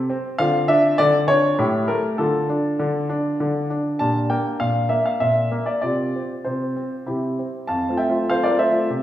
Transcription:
Already playing: G4 A4
0.10 C4
0.38 D3 C4 F4 F5
0.68 D4 E5
0.98 D3 D5
1.28 D4 C#5
1.59 A2 E4 G4
1.88 A3 A#4
2.18 D3 D4 F4 A4
2.49 D4
2.79 D3
3.09 D4
3.40 D3
3.70 D4
3.99 A#2 D4 G4 A5
4.30 A#3 G5
4.60 A#2 F5
4.89 A#3 E5
5.06 F5
5.20 A#2 E5
5.52 A#3
5.66 D5
5.82 C3 F4 G4 D5
6.15 C4
6.45 C3 C5
6.76 C4
7.06 C3 E4 G4
7.39 C4
7.67 F2 F5 A5
7.89 A3 C4 F4
7.97 E5 G5
8.09 A3 C4 F4
8.30 A3 C4 F4 C5 F5
8.43 A#4 D5
8.50 A3 C4 F4
8.59 C5 E5
8.71 A3 C4 F4
8.90 C3

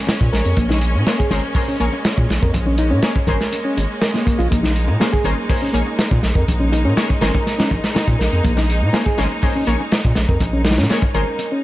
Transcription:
Already playing: G#3 A#3 C#4
0.07 snare, closed hi-hat, high bongo
0.21 A#2, kick
0.33 A#1 A#4, snare, closed hi-hat
0.45 F2, closed hi-hat, high bongo
0.57 A#1 A#3, kick, closed hi-hat
0.69 D#4, snare, high bongo, high conga
0.81 closed hi-hat
0.95 A#2
1.06 A#3 C#4 G#4 A#4 C5, snare, closed hi-hat, high bongo
1.19 G#4, kick
1.31 G#1 C#4 G#4 A#4 C5, snare, closed hi-hat, high bongo, high conga
1.55 C#4 G#4 A#4 C5, kick, open hi-hat
1.68 C#4, high bongo
1.80 A#1 A#3 C#4 G#4 A#4 C#5, closed hi-hat
1.93 high bongo
2.05 snare, closed hi-hat
2.18 A#2, kick
2.29 A#1, snare, closed hi-hat, high bongo
2.42 F2 A#4, kick
2.54 A#1, kick, closed hi-hat, high bongo
2.66 C#4, high conga
2.78 D#4, closed hi-hat
2.91 A#2 C#4, high bongo
3.02 A#3 C#4 G#4 A#4 C#5, snare, closed hi-hat
3.16 kick, high bongo
3.27 G#1 C#4 G#4 A#4 C5, kick, closed hi-hat, high conga
3.41 snare
3.53 closed hi-hat, high bongo
3.65 C#4
3.77 G#1, closed hi-hat, high bongo
4.01 A#4, snare, closed hi-hat
4.14 A#3, snare, high bongo
4.26 A#3, kick, closed hi-hat
4.38 A#1 F4, closed hi-hat, high bongo
4.51 A#1 A#3 D#4, kick, closed hi-hat
4.63 D#4, snare, high bongo, high conga
4.76 closed hi-hat
4.88 A#2, high bongo
5.00 A#3 C#4 G#4 A#4 C5, snare, closed hi-hat
5.13 G#4, kick
5.24 G#1 C#4 G#4 A#4 C5, closed hi-hat, high bongo, high conga
5.49 C#4 G#4 A#4 C5, kick, open hi-hat, high bongo
5.62 C#4
5.73 A#1 A#3 C#4 G#4 A#4 C#5, closed hi-hat
5.87 high bongo
5.99 snare, closed hi-hat
6.11 A#2, kick, high bongo
6.23 A#1, snare, closed hi-hat
6.35 F2 A#4, kick
6.48 A#1, kick, closed hi-hat, high bongo
6.60 C#4, high conga
6.72 D#4, closed hi-hat, high bongo
6.85 A#2 C#4
6.96 A#3 C#4 G#4 A#4 C#5, snare, closed hi-hat
7.09 kick, high bongo
7.21 G#1 C#4 G#4 A#4 C5, snare, closed hi-hat, high conga
7.35 kick, high bongo
7.47 snare, closed hi-hat
7.58 C#4, snare, closed hi-hat
7.71 A#1, kick, high bongo
7.84 snare, closed hi-hat
7.95 snare, closed hi-hat, high bongo
8.08 A#2, kick
8.19 A#1 A#4, snare, closed hi-hat
8.32 F2, closed hi-hat, high bongo
8.44 A#1 A#3, kick, closed hi-hat
8.57 D#4, snare, high bongo, high conga
8.70 closed hi-hat
8.82 A#2
8.93 A#3 C#4 G#4 A#4 C5, snare, closed hi-hat, high bongo
9.06 G#4, kick
9.18 G#1 C#4 G#4 A#4 C5, snare, closed hi-hat, high bongo, high conga
9.42 C#4 G#4 A#4 C5, kick, open hi-hat
9.55 C#4, high bongo
9.67 A#1 A#3 C#4 G#4 A#4 C#5, closed hi-hat
9.80 high bongo
9.92 snare, closed hi-hat
10.05 A#2, kick
10.15 A#1, snare, closed hi-hat, high bongo
10.29 F2 A#4, kick
10.40 A#1, kick, closed hi-hat, high bongo
10.53 C#4, high conga
10.65 D#4, snare, closed hi-hat
10.71 snare, closed hi-hat
10.77 A#2 C#4, snare, closed hi-hat, high bongo
10.83 snare, closed hi-hat
10.89 A#3 C#4 G#4 A#4 C#5, snare, closed hi-hat
11.02 kick, high bongo
11.14 G#1 C#4 G#4 A#4 C5, closed hi-hat, high conga
11.39 closed hi-hat, high bongo
11.52 C#4

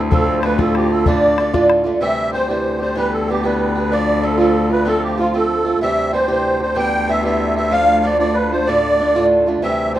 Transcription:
Already playing: D2 A3 E4
0.00 C4
0.09 A2 F3 A3 C4 F4 A4, bodhran
0.28 bodhran
0.39 C5
0.43 F3 A3 C4 F4 B4, bodhran
0.58 A2 F3 A3 C4 F4 A4, bodhran
0.75 G4, bodhran
0.90 A3 C4 F4 A4
1.06 D2 A2 D3 A3 D4 F4 D5, bodhran
1.23 bodhran
1.38 D3 A3 D4 F4, bodhran
1.53 D2 A2 D3 A3 D4 F4, bodhran
1.70 bodhran
1.84 D3 A3 D4 F4
2.01 D2 C3 E3 G3 C4 G4 E5
2.33 E3 G3 C4 G4 C5
2.48 C3 E3 G3 C4 G4 C5
2.79 G3 C4 G4 C5
2.96 E3 G3 B3 G4 B4
3.13 A4
3.28 E3 G3 B3 G4
3.43 E3 G3 B3 G4 B4
3.75 G3 B3 G4
3.91 F3 A3 D4 F4 D5
4.22 F3 A3 D4 F4 A4
4.37 F3 A3 D4 F4 A4
4.69 A3 D4 F4 B4
4.85 F3 A3 C4 F4 A4
5.03 G4
5.17 F3 A3 C4 F4
5.34 F3 A3 C4 F4 A4
5.64 A3 C4 F4
5.81 D2 C3 E3 G3 C4 G4 E5
6.12 E3 G3 C4 G4 C5
6.28 C3 E3 G3 C4 G4 C5
6.60 G3 C4 G4 C5
6.75 E3 G3 B3 G4 G5
7.08 E3 G3 B3 G4 E5
7.23 E3 G3 B3 G4 E5
7.56 G3 B3 G4 E5
7.71 F3 A3 D4 F4 F5
8.03 F3 A3 D4 F4 D5
8.19 F3 A3 D4 F4 D5
8.34 B4
8.51 A3 D4 F4 C5
8.66 D2 A2 D3 A3 D4 F4 D5
8.99 D3 A3 D4 F4
9.15 D2 A2 D3 A3 D4 F4
9.46 D3 A3 D4 F4
9.62 D2 C3 E3 G3 C4 G4 E5
9.94 E3 G3 C5

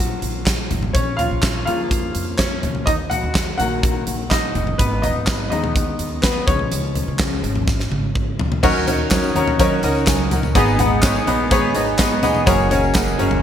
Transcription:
Already playing: A#1 D#3 F3 F#3 A#3 F4 F#4
0.22 A#1, closed hi-hat
0.46 kick, snare, clap, closed hi-hat
0.71 G#1, closed hi-hat, floor tom
0.83 floor tom
0.93 A#1 C#4 C#5, kick, closed hi-hat
1.17 F4 F5, closed hi-hat, floor tom
1.31 A#1
1.43 kick, snare, clap, closed hi-hat
1.65 F2 C#3 F3 A#3 F4 F5, closed hi-hat
1.91 kick, closed hi-hat
2.15 F2, closed hi-hat
2.37 C#4 C#5, kick, snare, clap, closed hi-hat
2.63 C#2, closed hi-hat, floor tom
2.75 floor tom
2.86 D#2 D#4 D#5, kick, closed hi-hat
3.10 F#4 F#5, closed hi-hat, floor tom
3.23 D#2
3.35 kick, snare, clap, closed hi-hat
3.58 A#1 D#3 F#3 A#3 F#4 F#5, closed hi-hat
3.83 kick, closed hi-hat
4.07 A#1, closed hi-hat
4.30 D#4 D#5, kick, snare, clap, closed hi-hat
4.55 F#1, closed hi-hat, floor tom
4.67 floor tom
4.78 G#1 B3 B4, kick, closed hi-hat
5.02 D#4 D#5, closed hi-hat, floor tom
5.16 G#1
5.27 kick, snare, clap, closed hi-hat
5.50 D#2 D#3 G#3 B3 D#4 D#5, closed hi-hat
5.64 floor tom
5.76 kick, closed hi-hat
5.99 D#2, closed hi-hat
6.22 B3 B4, kick, snare, clap, closed hi-hat
6.47 C#2 F3 G#3 C#4 C#5, kick, closed hi-hat, floor tom
6.59 floor tom
6.72 C#2, closed hi-hat
6.95 closed hi-hat, floor tom
7.08 C#2
7.19 F3 G#3 C#4, kick, snare, clap, closed hi-hat
7.43 G#1, closed hi-hat
7.55 floor tom
7.67 kick, snare
7.79 snare
7.92 G#1, high tom
8.15 kick
8.39 C#2, floor tom
8.52 floor tom
8.63 D#2 D#3 F#3 C#4 D#4 F#4 A#4 C#5, kick, crash, tambourine
8.76 tambourine
8.87 C#4 D#4 F#4 A#4 C#5, closed hi-hat, floor tom, tambourine
9.11 F#3 C#4 D#4 F#4 A#4 C#5, kick, snare, clap, closed hi-hat, tambourine
9.24 tambourine
9.35 D#2 C#4 D#4 F#4 A#4 C#5, closed hi-hat
9.48 floor tom
9.59 D#3 F#3 C#4 D#4 F#4 A#4 C#5, kick, closed hi-hat, tambourine
9.83 C#2 C#4 D#4 F#4 A#4 D#5, closed hi-hat, tambourine
9.95 tambourine
10.07 F#3 C#4 D#4 A#4 G#5, kick, snare, clap, closed hi-hat, tambourine
10.31 C#4 D#4 A#4 F#5, closed hi-hat, floor tom, tambourine
10.43 floor tom, tambourine
10.55 G#1 G#2 D#3 G#3 B3 D#4 G#4 B4 D#5, kick, closed hi-hat, tambourine
10.68 tambourine
10.79 G#3 B3 D#4 G#4 B4 F#5, closed hi-hat, floor tom, tambourine
11.03 B3 D#4 G#4 B4 C#5, kick, snare, clap, closed hi-hat, tambourine
11.16 tambourine
11.27 A#1 G#3 B3 D#4 G#4 B4 D#5, closed hi-hat
11.51 G#2 D#3 G#3 B3 D#4 G#4 B4 C#5, kick, closed hi-hat, tambourine
11.74 G#1 G#3 B3 D#4 G#4 B4 D#5, closed hi-hat, tambourine
11.99 G#3 B3 D#4 G#4 B4 D#5, kick, snare, clap, closed hi-hat, tambourine
12.23 G#3 B3 D#4 G#4 B4 D#5, closed hi-hat, floor tom, tambourine
12.35 floor tom, tambourine
12.46 F#1 F#3 A#3 C#4 F#4 G#4 A#4 C#5, kick, closed hi-hat, tambourine
12.60 tambourine
12.70 C#4 F#4 G#4 A#4 C#5, closed hi-hat, floor tom, tambourine
12.83 tambourine
12.94 A#3 C#4 F#4 G#4 A#4 D#5, kick, snare, clap, closed hi-hat, tambourine
13.08 tambourine
13.18 F#1 C#4 F#4 G#4 A#4 C#5, closed hi-hat
13.31 floor tom

